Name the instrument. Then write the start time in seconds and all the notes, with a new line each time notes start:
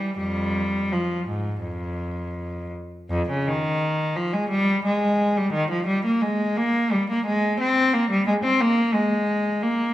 cello
Already playing: G3
0.18 F2 G3
0.92 F3
1.28 G#2
1.63 F2
3.10 F2
3.30 C#3
3.47 D#3
4.16 F3
4.33 G#3
4.50 G3
4.85 G#3
5.37 G3
5.53 D#3
5.71 F3
5.87 G3
6.05 A#3
6.22 G#3
6.57 A#3
6.92 G3
7.10 A#3
7.26 G#3
7.61 C4
7.94 A#3
8.10 G3
8.27 G#3
8.44 C4
8.61 A#3
8.94 G#3
9.62 A#3